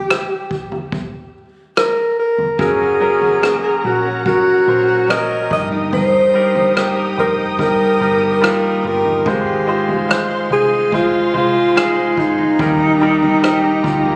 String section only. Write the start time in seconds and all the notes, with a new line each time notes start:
2.58 A#4 F#5 A#5
5.52 G5 D#6
9.27 G#3 F5 C6
12.59 G4 D#5 A#5